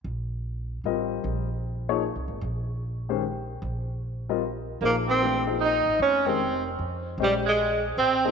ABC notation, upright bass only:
X:1
M:3/4
L:1/8
Q:"Swing" 1/4=151
K:Bbdor
V:1 name="Upright bass" clef=bass
B,,,4 =A,,,2 | B,,,4- (3B,,, C,, A,,, | B,,,6 | B,,,6 |
B,,,4- B,,, =A,,, | F,,,4 F,,2 | B,,,4 =A,,,2 |]